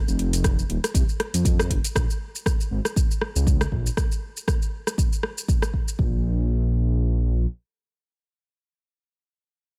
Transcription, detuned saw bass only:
0.08 F1
0.69 D#1
0.94 C2
1.34 F2
1.70 F1
1.96 A#1
2.71 G#1
3.35 C#2
3.72 A#1
5.99 A#1

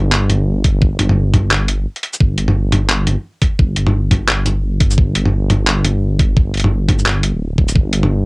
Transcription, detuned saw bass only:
Already playing: G1
0.82 G1
0.99 G1
2.20 G1
3.07 G1
3.59 G1
3.77 G1
4.98 G1
5.15 G1
6.37 G1
6.54 G1
7.34 D1
7.76 G1

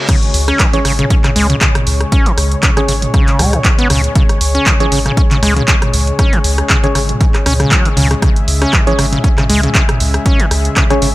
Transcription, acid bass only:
0.09 C#3
0.48 C#4
0.60 C#3
0.73 E3
0.85 C#3
0.99 C#3
1.10 C#4
1.24 C#3
1.36 G#3
1.50 C#3
1.61 C#3
2.12 C#4
2.26 C#3
2.63 C#3
2.77 D3
2.89 C#3
3.14 C#3
3.39 G#3
3.53 C#3
3.79 B3
3.90 C#3
4.16 C#3
4.55 C#4
4.66 C#3
4.80 E3
4.92 C#3
5.06 C#3
5.17 C#4
5.31 C#3
5.43 G#3
5.57 C#3
5.68 C#3
6.19 C#4
6.33 C#3
6.70 C#3
6.84 D3
6.95 C#3
7.21 C#3
7.46 C#4
7.60 C#3
7.71 F#3
7.85 C#3
7.97 C#3
8.11 C#3
8.22 C#3
8.62 C#4
8.73 C#3
8.87 E3
8.99 C#3
9.12 C#3
9.24 C#4
9.38 C#3
9.50 G#3
9.63 C#3
9.75 C#3
10.26 C#4
10.40 C#3
10.77 C#3
10.90 D3
11.02 C#3

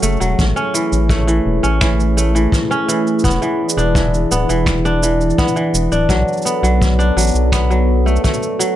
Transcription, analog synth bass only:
0.03 F#1
0.20 E1
0.39 A1
0.92 A1
1.46 E1
1.64 A1
3.24 E1
3.77 E1
4.31 D1
4.49 E1
5.74 E1
5.92 D1
6.09 B1
6.63 B1
7.16 A1
7.34 B1

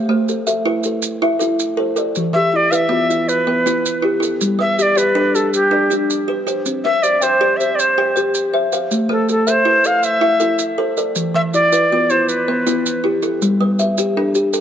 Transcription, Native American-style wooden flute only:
2.34 E5
2.52 D5 E5
2.71 E5 F5
3.28 B4
4.61 E5
4.78 D5 E5
4.97 B4
5.35 A4
5.55 G4
6.84 E5
7.03 D5
7.19 C5 D5
7.57 E5
7.75 D5
7.79 C5
9.11 A4
9.31 A4
9.50 C5
9.86 F5
10.04 E5
11.35 E5
11.54 D5
12.10 C5
12.28 B4

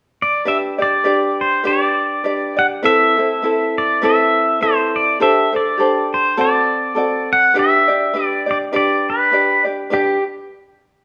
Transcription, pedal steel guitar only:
0.22 D5
0.48 E5
0.82 D5
1.41 C5
1.67 D5
2.59 F#5
2.86 E5
3.78 D5
4.05 E5
4.63 C5
4.96 D5
5.22 E5
5.56 D5
6.14 C5
6.41 D5
7.33 F#5
7.59 E5
8.25 D5
8.51 D5
8.76 D5
9.10 B4
9.94 G4

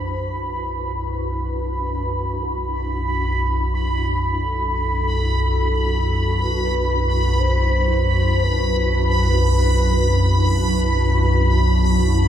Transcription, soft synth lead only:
Already playing: C5
0.41 B4
2.42 F#4
4.38 A4
6.40 B4
7.39 C5
8.43 B4
10.44 B4

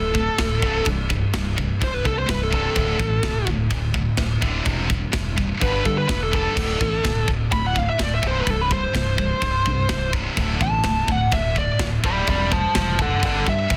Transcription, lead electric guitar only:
Already playing: A4
1.84 C5
1.94 B4
2.07 A4
2.19 C5
2.30 B4
2.43 A4
2.55 A4
5.62 B4
5.73 B4
5.85 A4
5.98 B4
6.08 B4
6.23 A4
6.35 A4
7.52 B5
7.67 F#5
7.78 F5
7.89 E5
8.03 D5
8.15 E5
8.27 C5
8.41 B4
8.50 A4
8.61 B4
8.73 C5
10.63 A5
11.12 F#5
11.33 E5
11.59 D5
12.06 D5 B5
12.29 D5 B5
12.52 C5 A5
12.76 C5 A5
13.01 A4 F#5
13.25 A4 F#5
13.49 E5

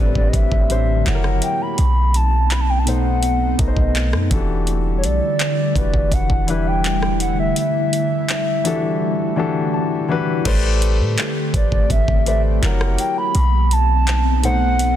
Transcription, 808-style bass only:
Already playing: A1
0.16 A1
0.34 A1
0.52 A1
1.07 F#1
1.79 B1
3.59 B1
3.77 B1
4.13 F#2
4.31 E1
5.04 B1
5.76 E1
5.94 E1
6.12 E1
6.30 E1
10.46 A1
11.00 A2
11.54 A1
11.72 A1
11.90 A1
12.08 A1
12.63 F#1
13.35 B1

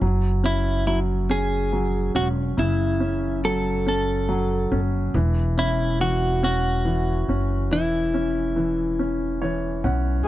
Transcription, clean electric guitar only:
0.46 E4
0.87 E4
1.31 G#4
2.16 F#4
2.59 E4
3.45 A4
3.88 A4
5.59 E4
6.01 F#4
6.44 F#4
7.73 E4

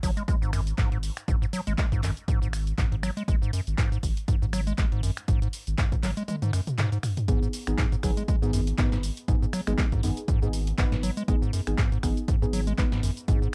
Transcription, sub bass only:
0.03 G#1
0.42 G#1
0.78 G#1
1.28 G#1
1.67 G#1
2.03 G#1
2.42 G#1
2.78 G#1
3.28 G#1
3.67 G#1
4.03 G#1
4.42 G#1
4.78 G#1
5.28 G#1
5.67 G#1
6.03 G#1
7.28 G#1
7.67 G#1
8.03 G#1
8.42 G#1
8.78 G#1
9.28 G#1
9.67 G#1
10.03 G#1
10.42 G#1
10.78 G#1
11.28 G#1
11.67 G#1
12.03 G#1
12.42 G#1
12.78 G#1
13.28 G#1

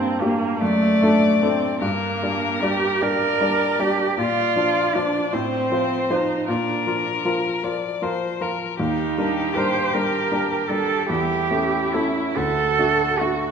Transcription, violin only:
0.60 D5
1.82 A#4
3.00 D5
4.17 D5
5.32 C5
6.48 A#4
7.64 D5
8.02 C5
8.41 A#4
8.79 G4
11.10 E4
12.38 F#4

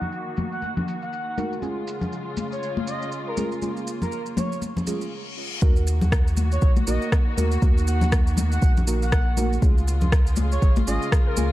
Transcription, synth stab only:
Already playing: A#3 D#4 F#4 A#4
1.37 A#3 D#4 F#4 A#4
1.62 G#3 C#4 F4 G#4
3.37 G#3 C#4 F4 G#4
3.62 G#3 C#4 F4 G#4
4.87 G#3 C#4 F4 G#4
5.62 A#3 D#4 F#4 A#4
6.87 A#3 D#4 F#4 A#4
7.37 A#3 D#4 F#4 A#4
7.62 A#3 D#4 F#4 A#4
8.87 A#3 D#4 F#4 A#4
9.37 A#3 D#4 F#4 A#4
9.62 G#3 C#4 F4 G#4
10.87 G#3 C#4 F4 G#4
11.37 G#3 C#4 F4 G#4

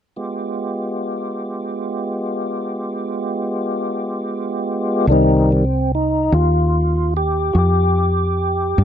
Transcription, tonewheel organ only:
0.16 G#3 B3 F4 G4
5.08 D#3 G3 C4 D4
5.13 D#4
5.52 C4
5.95 D#4
6.34 F4
7.17 G4
7.53 F#4
7.58 G4

